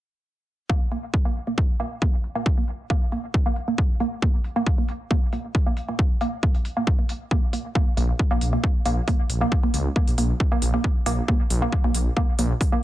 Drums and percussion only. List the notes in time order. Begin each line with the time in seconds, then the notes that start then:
0.70 kick
0.92 open hi-hat
1.14 kick
1.36 open hi-hat
1.58 kick
1.80 open hi-hat
2.02 kick
2.24 open hi-hat
2.46 kick
2.68 open hi-hat
2.90 kick
3.02 open hi-hat
3.12 open hi-hat
3.34 kick
3.56 open hi-hat
3.78 kick
4.00 open hi-hat
4.22 kick
4.44 open hi-hat
4.67 kick
4.89 open hi-hat
5.11 kick
5.33 open hi-hat
5.55 kick
5.77 open hi-hat
5.99 kick
6.21 open hi-hat
6.43 kick
6.55 open hi-hat
6.65 open hi-hat
6.87 kick
7.09 open hi-hat
7.31 kick
7.53 open hi-hat
7.75 kick
7.97 open hi-hat
8.19 kick
8.41 open hi-hat
8.64 kick
8.86 open hi-hat
9.08 kick, open hi-hat
9.30 open hi-hat
9.52 kick
9.74 open hi-hat
9.96 kick
10.08 open hi-hat
10.18 open hi-hat
10.40 kick
10.62 open hi-hat
10.84 kick
11.06 open hi-hat
11.28 kick
11.50 open hi-hat
11.72 kick
11.95 open hi-hat
12.17 kick
12.39 open hi-hat
12.61 kick, open hi-hat